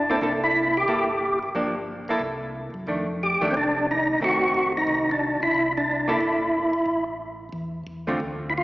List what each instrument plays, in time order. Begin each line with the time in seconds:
Already playing: tonewheel organ G1 D4
0.10 hollow-body jazz guitar A#3 E4 A4, tonewheel organ C4
0.21 tonewheel organ C2 D4, hollow-body jazz guitar A#3 E4 A4
0.44 tonewheel organ E4
0.77 tonewheel organ G4
0.88 tonewheel organ G1, hollow-body jazz guitar A#3 E4 A4
1.43 tonewheel organ G1
1.55 tonewheel organ G1, hollow-body jazz guitar F3 A#3 D4
2.08 tonewheel organ G1, hollow-body jazz guitar A#3 E4 A4
2.20 tonewheel organ C2
2.74 tonewheel organ F#2
2.87 tonewheel organ F2, hollow-body jazz guitar D#3 A3 D4
3.23 tonewheel organ G4
3.41 tonewheel organ F2, hollow-body jazz guitar D#3 A3 D4
3.51 tonewheel organ C2 C4
3.57 tonewheel organ D4
3.91 tonewheel organ D#4
4.21 tonewheel organ F#1 F#4, hollow-body jazz guitar D#3 A3 C4
4.54 tonewheel organ F1
4.77 tonewheel organ D#4
4.87 tonewheel organ C2
5.11 tonewheel organ D4
5.42 tonewheel organ C2 E4
5.55 tonewheel organ C2
5.77 tonewheel organ D4
6.08 hollow-body jazz guitar A#3 E4 A4, tonewheel organ E4
6.21 tonewheel organ G1
6.73 tonewheel organ G1
6.86 tonewheel organ A1
7.53 tonewheel organ E2
7.87 tonewheel organ E2
8.07 hollow-body jazz guitar D3 A3 C4 F4
8.20 tonewheel organ D2
8.50 tonewheel organ E4
8.58 tonewheel organ F4